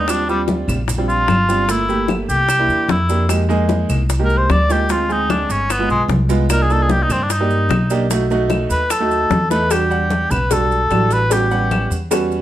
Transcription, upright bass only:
Already playing: D#2
0.68 A#1
1.28 G1
2.29 C2
2.68 E2
2.88 F2
3.89 C2
4.49 D2
5.49 G1
5.89 B1
6.08 C2
7.09 G2
7.69 B1
8.70 D#2
9.30 E2
10.31 B1
10.91 A1
11.90 E2

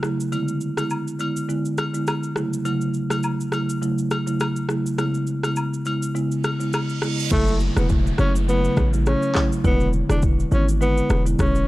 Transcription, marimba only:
0.03 C#3 F#3 A3 E4
0.32 D3 G#3 B3 E4
0.77 D3 G#3 B3 E4
1.20 D3 G#3 B3 E4
1.49 D3 G#3 B3 E4
1.94 D3 G#3 B3 E4
2.36 C#3 F#3 A3 E4
2.65 C#3 F#3 A3 E4
3.10 C#3 F#3 A3 E4
3.52 C#3 F#3 A3 E4
3.82 C#3 F#3 A3 E4
4.27 C#3 F#3 A3 E4
4.69 C#3 F#3 A3 E4
4.98 C#3 G#3 B3 E4
5.43 C#3 G#3 B3 E4
5.85 C#3 G#3 B3 E4
6.15 C#3 G#3 B3 E4
6.60 C#3 G#3 B3 E4
7.02 C#3 G#3 B3 E4
7.31 C#3 F#3 A3 E4
7.77 C#3 F#3 A3 E4
8.19 C#3 F#3 A3 E4
8.48 C#3 F#3 A3 E4
8.93 C#3 F#3 A3 E4
9.35 C#3 F#3 A3 E4
9.64 D3 G#3 B3 E4
10.09 D3 G#3 B3 E4
10.52 D3 G#3 B3 E4
10.81 D3 G#3 B3 E4
11.26 D3 G#3 B3 E4

